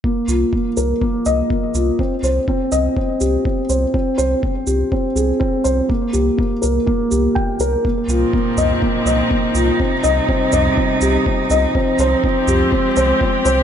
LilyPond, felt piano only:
\new Staff \with { instrumentName = "Felt piano" } { \time 4/4 \key c \minor \tempo 4 = 123 bes8 f'8 bes8 bes'8 bes8 ees''8 bes8 f'8 | c'8 c''8 c'8 ees''8 c'8 g'8 c'8 c''8 | c'8 c''8 c'8 g'8 c'8 aes'8 c'8 c''8 | bes8 g'8 bes8 bes'8 bes8 g'8 g''8 bes'8 |
bes8 f'8 bes8 ees''8 bes8 ees''8 bes8 f'8 | c'8 ees''8 c'8 ees''8 c'8 g'8 c'8 ees''8 | c'8 c''8 c'8 g'8 c'8 c''8 c'8 c''8 | }